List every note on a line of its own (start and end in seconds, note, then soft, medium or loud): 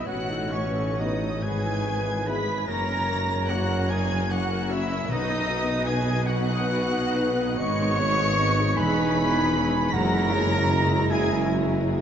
0.06 1.41 A1 medium
0.06 1.45 A1 loud
0.06 1.41 A2 medium
0.06 0.52 F#4 medium
0.06 0.28 F#4 medium
0.06 0.27 B4 medium
0.06 1.44 C#5 medium
0.06 0.51 F#5 medium
0.06 0.52 F#5 medium
0.06 0.54 F#5 loud
0.06 0.52 F#6 loud
0.29 0.52 D#4 medium
0.29 0.52 A4 medium
0.51 0.98 C#4 medium
0.51 0.75 F#4 medium
0.51 0.75 B4 medium
0.51 1.00 C#5 medium
0.51 0.99 C#5 medium
0.51 1.01 C#5 medium
0.51 0.99 C#6 medium
0.75 0.98 D#4 medium
0.75 0.98 A4 medium
0.97 1.14 B3 medium
0.97 1.15 D#4 medium
0.97 1.44 D#4 medium
0.97 1.19 F#4 medium
0.97 1.20 B4 medium
0.97 1.43 D#5 medium
0.97 1.44 D#5 medium
0.97 1.24 D#5 medium
0.97 1.44 D#6 medium
1.20 1.43 D#4 medium
1.20 1.43 A4 medium
1.43 2.68 G#1 medium
1.43 2.67 G#1 medium
1.43 2.68 G#2 medium
1.43 1.63 G#4 medium
1.43 2.27 G#4 medium
1.43 2.67 B4 medium
1.43 1.63 B4 medium
1.43 2.28 G#5 loud
1.43 2.27 G#5 loud
1.43 2.28 G#5 loud
1.43 2.27 G#6 loud
1.65 1.86 E4 medium
1.65 1.84 G#4 medium
1.85 2.06 G#4 medium
1.85 2.07 B4 medium
2.07 2.27 E4 medium
2.07 2.26 G#4 medium
2.26 2.41 B3 medium
2.26 2.41 E4 medium
2.26 2.46 G#4 medium
2.26 2.46 B4 medium
2.26 2.67 B4 loud
2.26 2.67 B5 medium
2.26 2.66 B5 loud
2.26 2.68 B5 medium
2.26 2.68 B6 loud
2.47 2.68 E4 medium
2.47 2.68 G#4 medium
2.67 5.06 F#1 medium
2.67 4.93 F#1 medium
2.67 5.06 F#2 medium
2.67 2.87 A#3 medium
2.67 3.49 A#4 loud
2.67 4.79 C#5 medium
2.67 2.87 C#5 medium
2.67 3.48 A#5 loud
2.67 3.51 A#5 loud
2.67 3.48 A#5 loud
2.67 3.48 A#6 loud
2.87 3.08 C#4 medium
2.87 3.08 A#4 medium
3.08 3.29 A#3 medium
3.08 3.29 C#5 medium
3.29 3.50 C#4 medium
3.29 3.50 A#4 medium
3.49 3.69 A#3 medium
3.49 3.64 C#4 medium
3.49 3.64 F#4 medium
3.49 3.90 F#4 medium
3.49 3.69 C#5 medium
3.49 3.89 F#5 loud
3.49 3.92 F#5 loud
3.49 3.90 F#5 medium
3.49 3.90 F#6 loud
3.69 3.90 C#4 medium
3.69 3.90 A#4 medium
3.90 4.11 A#3 medium
3.90 4.31 G#4 medium
3.90 4.11 C#5 medium
3.90 4.32 G#5 loud
3.90 4.31 G#5 loud
3.90 4.31 G#6 loud
4.11 4.31 C#4 medium
4.11 4.31 A#4 medium
4.30 4.49 A#3 medium
4.30 4.71 F#4 loud
4.30 4.49 C#5 medium
4.30 4.73 F#5 loud
4.30 4.71 F#5 loud
4.30 4.72 F#5 loud
4.30 4.71 F#6 loud
4.51 4.71 C#4 medium
4.51 4.71 A#4 medium
4.68 4.90 A#3 medium
4.68 4.83 C#4 loud
4.68 5.10 E4 loud
4.68 4.83 F#4 loud
4.68 4.90 C#5 medium
4.68 5.08 E5 loud
4.68 5.11 E5 loud
4.68 5.10 E5 loud
4.68 5.10 E6 loud
4.90 5.10 C#4 medium
4.90 5.10 A#4 medium
5.09 7.55 B1 medium
5.09 7.55 B1 loud
5.09 6.23 B2 loud
5.09 7.55 B2 medium
5.09 5.86 D#4 loud
5.09 5.28 F#4 medium
5.09 5.28 B4 medium
5.09 7.60 B4 loud
5.09 5.86 D#5 loud
5.09 5.88 D#5 loud
5.09 5.88 D#6 loud
5.29 5.48 D#4 medium
5.29 5.48 D#5 medium
5.49 5.68 F#4 medium
5.49 5.68 B4 medium
5.68 5.87 D#4 medium
5.68 5.87 D#5 medium
5.85 6.00 B3 loud
5.85 6.00 D#4 medium
5.85 6.06 F#4 medium
5.85 6.28 G#4 loud
5.85 6.06 B4 medium
5.85 6.29 G#5 loud
5.85 6.27 G#5 loud
5.85 6.28 G#6 loud
6.07 6.28 D#4 medium
6.07 6.27 D#5 medium
6.26 6.49 F#4 medium
6.26 7.42 F#4 loud
6.26 6.49 B4 medium
6.26 7.30 F#5 loud
6.26 7.59 F#5 loud
6.26 7.31 F#5 loud
6.26 7.59 F#6 loud
6.50 6.71 D#4 medium
6.50 6.71 D#5 medium
6.71 6.92 F#4 medium
6.71 6.92 B4 medium
6.93 7.16 D#4 medium
6.93 7.16 D#5 medium
7.14 7.30 B3 loud
7.14 7.31 D#4 loud
7.14 7.38 F#4 medium
7.14 7.38 B4 medium
7.39 7.60 D#4 medium
7.39 7.60 D#5 medium
7.58 8.75 G#1 loud
7.58 8.80 G#1 loud
7.58 8.76 G#2 loud
7.58 8.74 B3 loud
7.58 7.79 B3 medium
7.58 9.91 D#4 medium
7.58 7.79 B4 medium
7.58 8.75 C#5 loud
7.58 8.01 D#5 loud
7.58 8.79 C#6 loud
7.58 8.77 C#6 loud
7.58 8.75 C#7 loud
7.80 8.00 D#4 medium
7.80 8.00 G#4 medium
7.99 8.20 B3 medium
7.99 8.20 B4 medium
7.99 8.40 C#5 loud
8.21 8.40 D#4 medium
8.21 8.40 G#4 medium
8.38 8.57 B3 medium
8.38 8.57 B4 medium
8.38 8.76 D#5 medium
8.59 8.78 D#4 medium
8.59 8.77 G#4 medium
8.76 9.94 E1 loud
8.76 9.94 E1 medium
8.76 9.94 E2 loud
8.76 12.01 G#3 loud
8.76 8.96 E4 medium
8.76 8.96 G#4 loud
8.76 9.94 B4 loud
8.76 9.91 G#5 loud
8.76 9.92 B5 loud
8.76 9.93 B5 loud
8.76 9.95 B5 loud
8.76 9.87 B6 loud
8.97 9.16 D#4 medium
8.97 9.16 B4 medium
9.16 9.35 E4 medium
9.16 9.35 G#4 medium
9.35 9.55 D#4 medium
9.35 9.55 B4 medium
9.54 9.73 E4 medium
9.54 9.73 G#4 medium
9.73 9.94 D#4 medium
9.73 9.94 B4 medium
9.88 9.94 B6 loud
9.93 12.01 F#1 loud
9.93 11.07 F#2 loud
9.93 12.01 F#2 loud
9.93 12.01 E4 loud
9.93 10.12 F#4 medium
9.93 10.12 G#4 medium
9.93 11.09 A#4 loud
9.93 10.34 F#5 loud
9.93 11.12 A#5 loud
9.93 11.14 A#5 loud
9.93 11.09 A#5 loud
9.93 11.11 A#6 loud
10.14 10.34 E4 medium
10.14 10.32 F#4 medium
10.33 10.51 F#4 medium
10.33 10.53 G#4 medium
10.33 10.74 C#5 medium
10.52 10.72 E4 medium
10.52 10.70 F#4 medium
10.72 10.90 F#4 medium
10.72 10.90 G#4 medium
10.72 11.13 D#5 loud
10.91 11.11 E4 medium
10.91 11.09 F#4 medium
11.11 11.29 F#4 medium
11.11 11.31 G#4 medium
11.11 11.51 G#4 loud
11.11 12.01 E5 loud
11.11 11.50 G#5 loud
11.11 11.51 G#5 loud
11.11 11.50 G#6 loud
11.30 11.50 E4 medium
11.30 11.49 F#4 medium
11.50 11.69 F#4 medium
11.50 11.69 G#4 medium
11.70 11.91 E4 medium
11.70 11.90 F#4 medium
11.91 12.01 F#4 medium
11.91 12.01 G#4 medium